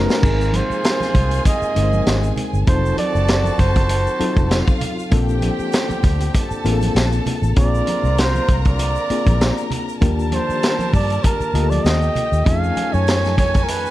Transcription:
Already playing: reed electric piano A3 C#4 D#4 F#4 B4, violin section B3 F#4 D#5, flugelhorn A#4
0.10 snare, shaker
0.22 fingered electric bass G#1, horn section C3 A#3 F4, reed electric piano G#3 C4 D#4 G#4 A#4, violin section G#4 G#5, kick, crash, muted conga, low conga, shaker
0.41 shaker
0.53 flugelhorn C5, closed hi-hat, muted conga, high conga, shaker
0.70 muted fingered electric bass stroke, shaker
0.84 snare, closed hi-hat, muted conga, shaker
1.00 snare, high conga, shaker
1.14 fingered electric bass C2, kick, closed hi-hat, low conga, shaker
1.31 closed hi-hat, shaker
1.45 flugelhorn D#5, kick, closed hi-hat, muted conga, shaker
1.62 muted fingered electric bass stroke, shaker
1.75 fingered electric bass G1, reed electric piano G#3 C4 D#4 G#4 A#4, closed hi-hat, shaker
1.83 reed electric piano C5
1.93 high conga, shaker
2.06 fingered electric bass G#1, snare, closed hi-hat, muted conga, shaker
2.23 shaker
2.36 closed hi-hat, low conga, shaker
2.53 fingered electric bass G1, shaker
2.67 fingered electric bass F1, horn section D#3 C4 F#4, reed electric piano F#3 C4 D#4 F4 A4, violin section A4 A5, flugelhorn C5, kick, closed hi-hat, muted conga, low conga, shaker
2.85 shaker
2.97 flugelhorn D5, closed hi-hat, muted conga, high conga, shaker
3.15 fingered electric bass F#1, shaker
3.28 snare, closed hi-hat, shaker
3.44 high conga, shaker
3.58 fingered electric bass F#1, flugelhorn C5, kick, closed hi-hat, low conga, shaker
3.76 kick, closed hi-hat, shaker
3.89 closed hi-hat, muted conga, shaker
4.07 shaker
4.19 reed electric piano F#3 C4 D#4 F4 A4, muted fingered electric bass stroke, closed hi-hat, muted conga, shaker
4.36 fingered electric bass F1, kick, high conga, shaker
4.51 violin section F4 F5, snare, closed hi-hat, muted conga, shaker
4.68 kick, shaker
4.81 closed hi-hat, low conga, shaker
4.99 shaker
5.11 fingered electric bass A#1, horn section D3 C4 G4, reed electric piano A#3 C4 D4 F4 A4, violin section G4 G5, kick, closed hi-hat, muted conga, low conga, shaker
5.29 shaker
5.42 closed hi-hat, muted conga, high conga, shaker
5.59 muted fingered electric bass stroke, shaker
5.72 snare, closed hi-hat, shaker
5.89 muted fingered electric bass stroke, high conga, shaker
6.03 fingered electric bass D2, kick, closed hi-hat, muted conga, low conga, shaker
6.20 closed hi-hat, shaker
6.34 violin section A4 A5, kick, closed hi-hat, muted conga, shaker
6.51 muted fingered electric bass stroke, shaker
6.64 fingered electric bass A1, reed electric piano A#3 C4 D4 F4 G#4, closed hi-hat, muted conga, shaker
6.72 reed electric piano A4
6.81 closed hi-hat, high conga, shaker
6.95 fingered electric bass A#1, snare, closed hi-hat, shaker
7.12 shaker
7.26 closed hi-hat, muted conga, low conga, shaker
7.42 fingered electric bass A1, shaker
7.56 fingered electric bass A#1, horn section D3 C4 F4, reed electric piano A#3 C4 D4 F4 G#4, violin section A#4 A#5, flugelhorn D5, kick, closed hi-hat, muted conga, low conga, shaker
7.75 shaker
7.87 closed hi-hat, high conga, shaker
8.03 fingered electric bass C2, shaker
8.18 flugelhorn C5, snare, closed hi-hat, shaker
8.35 high conga, shaker
8.48 fingered electric bass C2, kick, closed hi-hat, muted conga, low conga, shaker
8.65 flugelhorn D5, kick, closed hi-hat, shaker
8.79 closed hi-hat, muted conga, shaker
8.96 shaker
9.10 reed electric piano A#3 C4 D4 F4 G#4, muted fingered electric bass stroke, closed hi-hat, shaker
9.26 fingered electric bass A#1, kick, closed hi-hat, high conga, shaker
9.41 snare, closed hi-hat, shaker
9.58 shaker
9.71 closed hi-hat, low conga, shaker
9.89 shaker
10.01 fingered electric bass D#2, horn section D3 G3 A5, reed electric piano D#3 A#3 D4 F4 G4, violin section A#4 A5, kick, closed hi-hat, muted conga, low conga, shaker
10.19 shaker
10.32 flugelhorn C5, closed hi-hat, high conga, shaker
10.49 muted fingered electric bass stroke, shaker
10.63 snare, closed hi-hat, muted conga, shaker
10.79 high conga, shaker
10.93 fingered electric bass G2, flugelhorn D5, kick, open hi-hat, low conga, shaker
11.10 closed hi-hat, shaker
11.24 flugelhorn A#4, kick, closed hi-hat, shaker
11.40 muted fingered electric bass stroke, shaker
11.54 fingered electric bass D2, reed electric piano A#3 F4 G4 D#5, closed hi-hat, muted conga, shaker
11.62 reed electric piano A4
11.70 flugelhorn D5, closed hi-hat, high conga, shaker
11.85 fingered electric bass D#2, violin section G4 G5, flugelhorn D#5, snare, closed hi-hat, muted conga, shaker
12.02 shaker
12.15 closed hi-hat, muted conga, low conga, shaker
12.32 fingered electric bass D#2, shaker
12.45 fingered electric bass F2, horn section D#3 C#4 G#5, reed electric piano A3 C#4 D#4 F4 G#4, violin section A4 G#5, flugelhorn F5, kick, closed hi-hat, low conga, shaker
12.64 shaker
12.77 closed hi-hat, high conga, shaker
12.93 fingered electric bass F#2, flugelhorn C#5, shaker
13.07 snare, closed hi-hat, shaker
13.23 snare, high conga, shaker
13.37 fingered electric bass F2, flugelhorn C#5, kick, closed hi-hat, low conga, shaker
13.54 kick, closed hi-hat, shaker
13.63 flugelhorn A#4
13.68 flugelhorn B4, closed hi-hat, muted conga, shaker
13.86 shaker

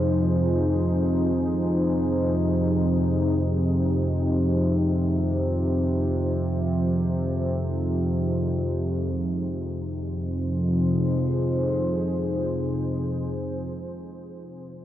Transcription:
Already playing: synth drone F2 C3, ambient pad F3 D#4 G#4 C5
9.13 synth drone F2 C3, ambient pad F3
9.31 ambient pad D#4
9.48 ambient pad G#4
9.66 ambient pad C5

